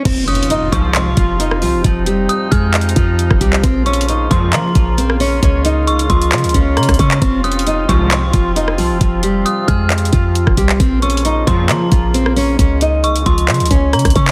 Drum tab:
CC |x-----------------------------------------------------------------------------------------------|------------------------------------------------------------------------------------------------|------------------------------------------------------------------------------------------------|------------------------------------------------------------------------------------------------|
HH |x-----------x---x---x---x-----------x-----------x-----------x-----------x-----------o-----------|x-----------x-----------x-----------x-----------x---x---x---x-----------x-----------x-----------|x-----------x---x---x---x-----------x-----------x-----------x-----------x-----------o-----------|x-----------x-----------x-----x-----x-----x-----x--x--x--x--x-----------x--x--x--x--x-----------|
CP |------------------------------------------------x-----------------------------------------------|------------------------------------------------x-----------------------------------------x-----|------------------------------------------------x-----------------------------------------------|------------------------------------------------x-----------------------------------------x-----|
SD |------------------------------------------------------------------------------r-----------------|------------------------------------------------------------------------------r-----------------|------------------------------------------------------------------------------r-----------------|------------------------------------------------------------------------r-----r-----------------|
BD |o-----------------------------------o-----------------------o-----------------------------------|o-----------------------------------o-----------------------o-----------------o-----o-----------|o-----------------------------------o-----------------------o-----------------------------------|o-----------------------------------o-----------------------o-----------------o-----o-----------|

CC |------------------------------------------------------------------------------------------------|------------------------------------------------------------------------------------------------|------------------------------------------------------------------------------------------------|------------------------------------------------------------------------------------------------|
HH |x-----------x---x---x---x-----------x-----------x-----------x-----------x-----------o-----------|x-----------x-----------x-----------x-----------x---x---x---x-----------x-----------x-----------|x-----------x---x---x---x-----------x-----------x-----------x-----------x-----------o-----------|x-----------x-----------x-----x-----x-----x-----x--x--x--x--x-----------x--x--x--x--x-----------|
CP |------------------------------------------------x-----------------------------------------------|------------------------------------------------x-----------------------------------------x-----|------------------------------------------------x-----------------------------------------------|------------------------------------------------x-----------------------------------------x-----|
SD |------------------------------------------------------------------------------r-----------------|------------------------------------------------------------------------------r-----------------|------------------------------------------------------------------------------r-----------------|------------------------------------------------------------------------r-----r-----------------|
BD |o-----------------------------------o-----------------------o-----------------------------------|o-----------------------------------o-----------------------o-----------------o-----o-----------|o-----------------------------------o-----------------------o-----------------------------------|o-----------------------------------o-----------------------o-----------------o-----o-----------|